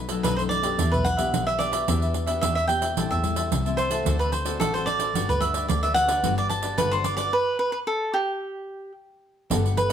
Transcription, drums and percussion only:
0, 0, Header, 1, 2, 480
1, 0, Start_track
1, 0, Key_signature, 1, "major"
1, 0, Tempo, 544959
1, 691, Time_signature, 4, 2, 24, 8
1, 8744, End_track
2, 0, Start_track
2, 0, Title_t, "Pandeiro"
2, 76, Note_on_c, 9, 54, 62
2, 165, Note_off_c, 9, 54, 0
2, 214, Note_on_c, 9, 54, 80
2, 302, Note_off_c, 9, 54, 0
2, 341, Note_on_c, 9, 54, 32
2, 429, Note_off_c, 9, 54, 0
2, 447, Note_on_c, 9, 54, 52
2, 535, Note_off_c, 9, 54, 0
2, 558, Note_on_c, 9, 54, 66
2, 646, Note_off_c, 9, 54, 0
2, 693, Note_on_c, 9, 54, 77
2, 781, Note_off_c, 9, 54, 0
2, 823, Note_on_c, 9, 54, 33
2, 911, Note_off_c, 9, 54, 0
2, 929, Note_on_c, 9, 54, 52
2, 1017, Note_off_c, 9, 54, 0
2, 1044, Note_on_c, 9, 54, 65
2, 1132, Note_off_c, 9, 54, 0
2, 1178, Note_on_c, 9, 54, 78
2, 1266, Note_off_c, 9, 54, 0
2, 1305, Note_on_c, 9, 54, 31
2, 1393, Note_off_c, 9, 54, 0
2, 1410, Note_on_c, 9, 54, 56
2, 1498, Note_off_c, 9, 54, 0
2, 1522, Note_on_c, 9, 54, 70
2, 1610, Note_off_c, 9, 54, 0
2, 1657, Note_on_c, 9, 54, 77
2, 1745, Note_off_c, 9, 54, 0
2, 1780, Note_on_c, 9, 54, 34
2, 1868, Note_off_c, 9, 54, 0
2, 1887, Note_on_c, 9, 54, 54
2, 1975, Note_off_c, 9, 54, 0
2, 2002, Note_on_c, 9, 54, 58
2, 2090, Note_off_c, 9, 54, 0
2, 2136, Note_on_c, 9, 54, 84
2, 2224, Note_off_c, 9, 54, 0
2, 2265, Note_on_c, 9, 54, 34
2, 2353, Note_off_c, 9, 54, 0
2, 2368, Note_on_c, 9, 54, 53
2, 2456, Note_off_c, 9, 54, 0
2, 2483, Note_on_c, 9, 54, 61
2, 2571, Note_off_c, 9, 54, 0
2, 2616, Note_on_c, 9, 54, 74
2, 2704, Note_off_c, 9, 54, 0
2, 2745, Note_on_c, 9, 54, 33
2, 2833, Note_off_c, 9, 54, 0
2, 2850, Note_on_c, 9, 54, 52
2, 2938, Note_off_c, 9, 54, 0
2, 2962, Note_on_c, 9, 54, 65
2, 3050, Note_off_c, 9, 54, 0
2, 3098, Note_on_c, 9, 54, 78
2, 3186, Note_off_c, 9, 54, 0
2, 3222, Note_on_c, 9, 54, 33
2, 3311, Note_off_c, 9, 54, 0
2, 3331, Note_on_c, 9, 54, 54
2, 3419, Note_off_c, 9, 54, 0
2, 3441, Note_on_c, 9, 54, 69
2, 3529, Note_off_c, 9, 54, 0
2, 3576, Note_on_c, 9, 54, 76
2, 3665, Note_off_c, 9, 54, 0
2, 3704, Note_on_c, 9, 54, 32
2, 3792, Note_off_c, 9, 54, 0
2, 3810, Note_on_c, 9, 54, 53
2, 3898, Note_off_c, 9, 54, 0
2, 3924, Note_on_c, 9, 54, 61
2, 4012, Note_off_c, 9, 54, 0
2, 4059, Note_on_c, 9, 54, 80
2, 4147, Note_off_c, 9, 54, 0
2, 4186, Note_on_c, 9, 54, 32
2, 4274, Note_off_c, 9, 54, 0
2, 4290, Note_on_c, 9, 54, 57
2, 4378, Note_off_c, 9, 54, 0
2, 4401, Note_on_c, 9, 54, 64
2, 4489, Note_off_c, 9, 54, 0
2, 4539, Note_on_c, 9, 54, 75
2, 4628, Note_off_c, 9, 54, 0
2, 4666, Note_on_c, 9, 54, 34
2, 4754, Note_off_c, 9, 54, 0
2, 4770, Note_on_c, 9, 54, 55
2, 4858, Note_off_c, 9, 54, 0
2, 4881, Note_on_c, 9, 54, 62
2, 4969, Note_off_c, 9, 54, 0
2, 5016, Note_on_c, 9, 54, 74
2, 5104, Note_off_c, 9, 54, 0
2, 5141, Note_on_c, 9, 54, 33
2, 5229, Note_off_c, 9, 54, 0
2, 5248, Note_on_c, 9, 54, 55
2, 5336, Note_off_c, 9, 54, 0
2, 5359, Note_on_c, 9, 54, 69
2, 5447, Note_off_c, 9, 54, 0
2, 5493, Note_on_c, 9, 54, 77
2, 5582, Note_off_c, 9, 54, 0
2, 5622, Note_on_c, 9, 54, 32
2, 5710, Note_off_c, 9, 54, 0
2, 5727, Note_on_c, 9, 54, 55
2, 5816, Note_off_c, 9, 54, 0
2, 5836, Note_on_c, 9, 54, 58
2, 5924, Note_off_c, 9, 54, 0
2, 5973, Note_on_c, 9, 54, 76
2, 6061, Note_off_c, 9, 54, 0
2, 6099, Note_on_c, 9, 54, 31
2, 6187, Note_off_c, 9, 54, 0
2, 6205, Note_on_c, 9, 54, 58
2, 6293, Note_off_c, 9, 54, 0
2, 6319, Note_on_c, 9, 54, 59
2, 6407, Note_off_c, 9, 54, 0
2, 8375, Note_on_c, 9, 54, 79
2, 8464, Note_off_c, 9, 54, 0
2, 8505, Note_on_c, 9, 54, 35
2, 8593, Note_off_c, 9, 54, 0
2, 8609, Note_on_c, 9, 54, 55
2, 8697, Note_off_c, 9, 54, 0
2, 8744, End_track
0, 0, End_of_file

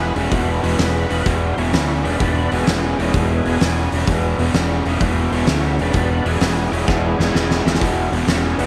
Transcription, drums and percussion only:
0, 0, Header, 1, 2, 480
1, 0, Start_track
1, 0, Tempo, 468384
1, 324, Time_signature, 4, 2, 24, 8
1, 8880, End_track
2, 0, Start_track
2, 0, Title_t, "Drums"
2, 163, Note_on_c, 9, 46, 57
2, 266, Note_off_c, 9, 46, 0
2, 324, Note_on_c, 9, 46, 80
2, 325, Note_on_c, 9, 36, 109
2, 426, Note_off_c, 9, 46, 0
2, 427, Note_off_c, 9, 36, 0
2, 653, Note_on_c, 9, 46, 56
2, 756, Note_off_c, 9, 46, 0
2, 805, Note_on_c, 9, 46, 72
2, 812, Note_on_c, 9, 38, 108
2, 908, Note_off_c, 9, 46, 0
2, 915, Note_off_c, 9, 38, 0
2, 1130, Note_on_c, 9, 46, 56
2, 1233, Note_off_c, 9, 46, 0
2, 1292, Note_on_c, 9, 36, 116
2, 1292, Note_on_c, 9, 46, 82
2, 1394, Note_off_c, 9, 36, 0
2, 1395, Note_off_c, 9, 46, 0
2, 1616, Note_on_c, 9, 46, 48
2, 1718, Note_off_c, 9, 46, 0
2, 1775, Note_on_c, 9, 46, 68
2, 1782, Note_on_c, 9, 38, 104
2, 1878, Note_off_c, 9, 46, 0
2, 1885, Note_off_c, 9, 38, 0
2, 2102, Note_on_c, 9, 46, 53
2, 2205, Note_off_c, 9, 46, 0
2, 2258, Note_on_c, 9, 36, 119
2, 2258, Note_on_c, 9, 46, 75
2, 2360, Note_off_c, 9, 36, 0
2, 2360, Note_off_c, 9, 46, 0
2, 2579, Note_on_c, 9, 46, 54
2, 2682, Note_off_c, 9, 46, 0
2, 2734, Note_on_c, 9, 46, 68
2, 2741, Note_on_c, 9, 38, 107
2, 2836, Note_off_c, 9, 46, 0
2, 2843, Note_off_c, 9, 38, 0
2, 3070, Note_on_c, 9, 46, 58
2, 3172, Note_off_c, 9, 46, 0
2, 3217, Note_on_c, 9, 46, 84
2, 3219, Note_on_c, 9, 36, 117
2, 3320, Note_off_c, 9, 46, 0
2, 3321, Note_off_c, 9, 36, 0
2, 3541, Note_on_c, 9, 46, 55
2, 3644, Note_off_c, 9, 46, 0
2, 3696, Note_on_c, 9, 46, 81
2, 3703, Note_on_c, 9, 38, 107
2, 3799, Note_off_c, 9, 46, 0
2, 3806, Note_off_c, 9, 38, 0
2, 4019, Note_on_c, 9, 46, 61
2, 4122, Note_off_c, 9, 46, 0
2, 4172, Note_on_c, 9, 46, 83
2, 4176, Note_on_c, 9, 36, 113
2, 4274, Note_off_c, 9, 46, 0
2, 4279, Note_off_c, 9, 36, 0
2, 4499, Note_on_c, 9, 46, 54
2, 4602, Note_off_c, 9, 46, 0
2, 4651, Note_on_c, 9, 46, 70
2, 4659, Note_on_c, 9, 38, 94
2, 4754, Note_off_c, 9, 46, 0
2, 4761, Note_off_c, 9, 38, 0
2, 4977, Note_on_c, 9, 46, 53
2, 5079, Note_off_c, 9, 46, 0
2, 5128, Note_on_c, 9, 46, 81
2, 5133, Note_on_c, 9, 36, 119
2, 5231, Note_off_c, 9, 46, 0
2, 5235, Note_off_c, 9, 36, 0
2, 5457, Note_on_c, 9, 46, 52
2, 5559, Note_off_c, 9, 46, 0
2, 5604, Note_on_c, 9, 46, 72
2, 5611, Note_on_c, 9, 38, 112
2, 5706, Note_off_c, 9, 46, 0
2, 5713, Note_off_c, 9, 38, 0
2, 5933, Note_on_c, 9, 46, 50
2, 6036, Note_off_c, 9, 46, 0
2, 6081, Note_on_c, 9, 46, 76
2, 6089, Note_on_c, 9, 36, 118
2, 6183, Note_off_c, 9, 46, 0
2, 6191, Note_off_c, 9, 36, 0
2, 6414, Note_on_c, 9, 46, 52
2, 6516, Note_off_c, 9, 46, 0
2, 6566, Note_on_c, 9, 46, 77
2, 6573, Note_on_c, 9, 38, 105
2, 6669, Note_off_c, 9, 46, 0
2, 6676, Note_off_c, 9, 38, 0
2, 6899, Note_on_c, 9, 46, 53
2, 7002, Note_off_c, 9, 46, 0
2, 7051, Note_on_c, 9, 36, 122
2, 7059, Note_on_c, 9, 38, 61
2, 7154, Note_off_c, 9, 36, 0
2, 7161, Note_off_c, 9, 38, 0
2, 7378, Note_on_c, 9, 38, 67
2, 7480, Note_off_c, 9, 38, 0
2, 7536, Note_on_c, 9, 38, 85
2, 7638, Note_off_c, 9, 38, 0
2, 7694, Note_on_c, 9, 38, 76
2, 7797, Note_off_c, 9, 38, 0
2, 7857, Note_on_c, 9, 38, 86
2, 7939, Note_off_c, 9, 38, 0
2, 7939, Note_on_c, 9, 38, 92
2, 8008, Note_on_c, 9, 46, 87
2, 8009, Note_on_c, 9, 36, 112
2, 8042, Note_off_c, 9, 38, 0
2, 8110, Note_off_c, 9, 46, 0
2, 8111, Note_off_c, 9, 36, 0
2, 8332, Note_on_c, 9, 46, 56
2, 8435, Note_off_c, 9, 46, 0
2, 8483, Note_on_c, 9, 46, 78
2, 8490, Note_on_c, 9, 38, 106
2, 8586, Note_off_c, 9, 46, 0
2, 8593, Note_off_c, 9, 38, 0
2, 8802, Note_on_c, 9, 46, 56
2, 8880, Note_off_c, 9, 46, 0
2, 8880, End_track
0, 0, End_of_file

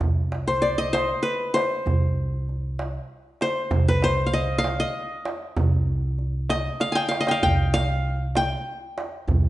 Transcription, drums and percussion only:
0, 0, Header, 1, 2, 480
1, 0, Start_track
1, 0, Tempo, 617920
1, 9, Time_signature, 6, 3, 24, 8
1, 7373, End_track
2, 0, Start_track
2, 0, Title_t, "Darbuka"
2, 6, Note_on_c, 9, 64, 84
2, 84, Note_off_c, 9, 64, 0
2, 248, Note_on_c, 9, 63, 61
2, 326, Note_off_c, 9, 63, 0
2, 492, Note_on_c, 9, 62, 26
2, 570, Note_off_c, 9, 62, 0
2, 734, Note_on_c, 9, 63, 72
2, 811, Note_off_c, 9, 63, 0
2, 1214, Note_on_c, 9, 63, 67
2, 1292, Note_off_c, 9, 63, 0
2, 1451, Note_on_c, 9, 64, 87
2, 1529, Note_off_c, 9, 64, 0
2, 1934, Note_on_c, 9, 62, 26
2, 2012, Note_off_c, 9, 62, 0
2, 2169, Note_on_c, 9, 63, 64
2, 2247, Note_off_c, 9, 63, 0
2, 2649, Note_on_c, 9, 63, 64
2, 2727, Note_off_c, 9, 63, 0
2, 2881, Note_on_c, 9, 64, 109
2, 2959, Note_off_c, 9, 64, 0
2, 3126, Note_on_c, 9, 63, 57
2, 3204, Note_off_c, 9, 63, 0
2, 3364, Note_on_c, 9, 62, 25
2, 3442, Note_off_c, 9, 62, 0
2, 3607, Note_on_c, 9, 63, 75
2, 3684, Note_off_c, 9, 63, 0
2, 4082, Note_on_c, 9, 63, 74
2, 4159, Note_off_c, 9, 63, 0
2, 4323, Note_on_c, 9, 64, 106
2, 4401, Note_off_c, 9, 64, 0
2, 4805, Note_on_c, 9, 62, 27
2, 4883, Note_off_c, 9, 62, 0
2, 5045, Note_on_c, 9, 63, 75
2, 5123, Note_off_c, 9, 63, 0
2, 5284, Note_on_c, 9, 63, 53
2, 5361, Note_off_c, 9, 63, 0
2, 5408, Note_on_c, 9, 62, 61
2, 5486, Note_off_c, 9, 62, 0
2, 5526, Note_on_c, 9, 63, 74
2, 5604, Note_off_c, 9, 63, 0
2, 5647, Note_on_c, 9, 62, 94
2, 5724, Note_off_c, 9, 62, 0
2, 5772, Note_on_c, 9, 64, 80
2, 5850, Note_off_c, 9, 64, 0
2, 6010, Note_on_c, 9, 63, 68
2, 6088, Note_off_c, 9, 63, 0
2, 6252, Note_on_c, 9, 62, 27
2, 6330, Note_off_c, 9, 62, 0
2, 6489, Note_on_c, 9, 63, 73
2, 6567, Note_off_c, 9, 63, 0
2, 6973, Note_on_c, 9, 63, 70
2, 7051, Note_off_c, 9, 63, 0
2, 7211, Note_on_c, 9, 64, 89
2, 7288, Note_off_c, 9, 64, 0
2, 7373, End_track
0, 0, End_of_file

